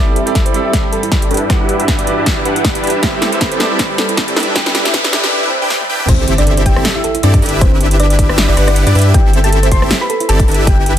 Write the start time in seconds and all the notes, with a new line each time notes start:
Already playing: G2 E3 G3 C4 E4 G4 A4 D5 E5, riser
0.16 G4, closed hi-hat
0.26 G3 G4 A4 D5 E5, closed hi-hat
0.35 A4, kick, snare, closed hi-hat
0.46 C5, closed hi-hat
0.52 G3 G4 A4 D5, closed hi-hat
0.56 E5
0.65 C4 E4 G4 A4 E5
0.73 kick, snare, closed hi-hat
0.84 G4
0.93 A4, closed hi-hat
1.03 E4, closed hi-hat
1.12 C4 E4 G4 A4 D5, kick, snare, closed hi-hat
1.22 G4, closed hi-hat
1.31 D4 E4 G4 A4 B4 E5, closed hi-hat
1.34 closed hi-hat
1.37 closed hi-hat
1.49 E3 G3 D4 E4 F#4 B4 F#5, kick, cross-stick, snare, closed hi-hat
1.60 D4 E4 G4 B4 E5
1.69 G4, closed hi-hat
1.79 G3 D4 F#4 B4 E5, closed hi-hat
1.88 B4, kick, snare, closed hi-hat
1.99 D5, closed hi-hat
2.05 G3 D4 F#4 B4 D5, closed hi-hat
2.18 D4 E4 G4 B4 E5
2.26 kick, snare, closed hi-hat
2.37 D4 E4 G4 B4 E5
2.45 D4 E4 G4 B4 F#5, closed hi-hat
2.56 E4, closed hi-hat
2.64 kick, snare, closed hi-hat
2.75 D4 E4 G4 B4 D5, closed hi-hat
2.83 D4 E4 G4 B4 E5, closed hi-hat
2.87 closed hi-hat
2.90 closed hi-hat
3.02 G3 C4 E4 G4 A4 B4 C5 E5, kick, snare, closed hi-hat
3.22 G4, snare, closed hi-hat
3.32 G3 G4 B4 C5 E5, closed hi-hat
3.41 A4, kick, snare, closed hi-hat
3.52 C5, closed hi-hat
3.58 G3 G4 B4 C5 D5, snare, closed hi-hat
3.71 C4 E4 G4 A4 E5
3.79 kick, snare, closed hi-hat
3.90 G4
3.98 A4, snare, closed hi-hat
4.09 E4, closed hi-hat
4.17 C4 E4 G4 A4 D5, kick, snare, closed hi-hat
4.28 G4, closed hi-hat
4.36 D4 E4 G4 A4 B4 E5, snare, closed hi-hat
4.40 closed hi-hat
4.43 closed hi-hat
4.55 G3 E4 G4 A4 B4 G5, kick, snare, closed hi-hat
4.66 D4 E4 G4 B4 E5, snare
4.75 G4, snare, closed hi-hat
4.84 G3 G4 A4 B4 E5, snare, closed hi-hat
4.94 B4, kick, snare, closed hi-hat
5.04 D5, snare, closed hi-hat
5.12 G3 G4 A4 B4 D5, snare, closed hi-hat
5.24 D4 E4 G4 B4 E5, snare
5.32 swell
5.43 D4 E4 G4 B4 E5
5.62 D4 E4 G4 B4 G5
5.70 snare
5.81 high tom
5.89 D4 E4 G4 B4 G5
6.00 mid tom
6.08 G1 C4 E4 G4 A4 C5 E5, kick, closed hi-hat, crash, impact
6.28 G4, closed hi-hat
6.38 D4 D5, closed hi-hat
6.47 A4, closed hi-hat
6.57 C5, closed hi-hat
6.66 G4 G5, kick, closed hi-hat
6.76 G1 C4 E4 G4 A4 E5, cross-stick
6.85 snare, closed hi-hat
6.96 E4 G4 E5
7.04 A4, closed hi-hat
7.15 E4, closed hi-hat
7.23 G2 C4 D4 E4 G4 A4 D5, closed hi-hat
7.34 G4, kick, closed hi-hat
7.42 G1 D4 E4 G4 A4 B4 E5, closed hi-hat, open hi-hat
7.49 closed hi-hat
7.61 C4 E4 C5, kick, closed hi-hat
7.72 G1 D4 E4 G4 B4 E5
7.80 G4, closed hi-hat
7.91 closed hi-hat
8.00 D4 B4 D5, closed hi-hat
8.10 D5, closed hi-hat
8.19 kick, closed hi-hat
8.29 G1 D4 E4 G4 B4 E5, cross-stick
8.38 snare, closed hi-hat
8.48 G1 D4 E4 G4 B4 D5 E5
8.57 G1 D4 E4 G4 B4 F#5, cross-stick, closed hi-hat
8.68 D4 E4 D5, cross-stick, closed hi-hat
8.76 closed hi-hat
8.87 G2 D4 E4 G4 B4 D5, closed hi-hat
8.95 G2 D4 E4 G4 B4 E5, closed hi-hat, open hi-hat
9.02 closed hi-hat
9.14 G1 C4 E4 G4 A4 E5 G5, kick, closed hi-hat
9.33 G4, closed hi-hat
9.44 A4 A5, closed hi-hat
9.52 A4, closed hi-hat
9.63 C5, closed hi-hat
9.72 C5 C6, kick, closed hi-hat
9.82 G1 C4 E4 G4 A4 E5, cross-stick
9.91 snare, closed hi-hat
10.01 G4 B4 B5
10.10 A4, closed hi-hat
10.20 E4, closed hi-hat
10.29 G1 C4 E4 G4 A4 D5 A5, closed hi-hat
10.40 G4, kick, closed hi-hat
10.48 G1 D4 E4 G4 A4 B4 E5, closed hi-hat, open hi-hat
10.54 closed hi-hat
10.67 E4 G4 G5, kick, closed hi-hat
10.78 G1 D4 E4 G4 B4 E5
10.86 G4, closed hi-hat